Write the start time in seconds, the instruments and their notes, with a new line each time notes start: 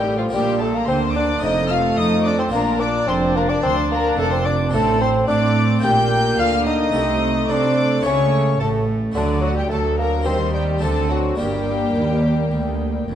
Already playing: double bass section A1, harpsichord A2 A3 D#4 F4, cello section A2, bassoon G3, viola section A3, violin section G4 G5
0.18 bassoon F3, violin section F4 F5
0.29 harpsichord A#3 D4 F4, viola section A#3, violin section G4 G5
0.33 double bass section A#1, harpsichord A#2, cello section A#2, bassoon G3
0.60 bassoon A3, violin section A4 A5
0.74 bassoon A#3, violin section A#4 A#5
0.86 double bass section D2, cello section D3, harpsichord D3, bassoon C4, violin section C5 C6
1.13 bassoon D4, violin section D5 D6
1.38 harpsichord A3 C4 F4, violin section D#6
1.42 double bass section F1, cello section F2, harpsichord F2, viola section A3, bassoon D#4, violin section D#5
1.68 bassoon F4, violin section F5 F6
1.97 double bass section F2, cello section F3, harpsichord F3, bassoon D#4, violin section D#5 D#6
2.24 bassoon D4, violin section D5 D6
2.38 bassoon C4, violin section C5 C6
2.48 harpsichord A#3 D4 F4, bassoon A#3
2.53 double bass section A#1, harpsichord A#2, cello section A#2, viola section D4, violin section A#4 A#5
2.80 bassoon D4, violin section D5 D6
3.07 double bass section F1, cello section F2, harpsichord F2, bassoon C4, violin section C5 C6
3.36 bassoon A#3, violin section A#4 A#5
3.49 bassoon D4, violin section D5 D6
3.63 cello section D2, double bass section D2, harpsichord D2, bassoon C4, violin section C5 C6
3.91 bassoon A#3, violin section A#4 A#5
4.17 double bass section F1, harpsichord F2, cello section F2, bassoon A3, violin section A4 A5
4.31 bassoon C4, violin section C5 C6
4.45 bassoon D4, violin section D5 D6
4.69 double bass section A1, cello section A2, harpsichord C4 D4 F#4, viola section C4, violin section A4 A5
4.74 harpsichord A2, bassoon A3
5.00 bassoon C4, violin section C5 C6
5.27 double bass section A2, cello section A3, harpsichord A3, viola section C4, bassoon D4, violin section D5 D6
5.79 harpsichord A#3 D4 G4, violin section G5
5.83 double bass section A#1, harpsichord A#2, cello section A#2, viola section A#3, bassoon G4, violin section G6
6.38 double bass section D2, harpsichord D3, cello section D3, bassoon F4, violin section F5 F6
6.66 bassoon D#4, violin section D#5 D#6
6.90 harpsichord A3 C4 A4, viola section A3
6.94 double bass section C2, cello section C3, harpsichord C3
7.49 double bass section C3, cello section C4, harpsichord C4, bassoon D4, violin section D5 D6
8.00 harpsichord A3 E4 G4
8.05 double bass section C#2, harpsichord C#3, cello section C#3, viola section A3, bassoon C#4, violin section C#5 C#6
8.60 double bass section A1, cello section A2, harpsichord A2, bassoon A3, viola section A3, violin section A4 A5
9.12 double bass section D2, bassoon D3, cello section D3, harpsichord D3 A3 D4 F#4, violin section D5
9.16 viola section F#3, violin section D4
9.42 bassoon F#3, violin section F#4 F#5
9.55 bassoon G3, violin section G4 G5
9.69 cello section D2, double bass section D2, harpsichord D2, viola section F#3, bassoon A3, violin section A4 A5
9.98 bassoon A#3, violin section A#4 A#5
10.21 viola section G3, harpsichord C4 G4
10.26 double bass section D#2, harpsichord D#3, cello section D#3, bassoon C4, violin section C5 C6
10.54 bassoon G3, violin section G4 G5
10.78 cello section D3, bassoon A3, harpsichord C4 D4 F#4, viola section C4, violin section A4 A5
10.82 double bass section D2, harpsichord D3
11.09 bassoon F#3, violin section F#4 F#5
11.36 double bass section G1, cello section G2, bassoon G3, harpsichord A#3 D4 G4, viola section A#3, violin section G5
11.40 harpsichord G2, violin section G4
11.95 cello section D#2, double bass section D#2, harpsichord D#2
12.51 cello section D2, harpsichord D2, double bass section D2
13.08 double bass section F1, cello section F2, harpsichord F2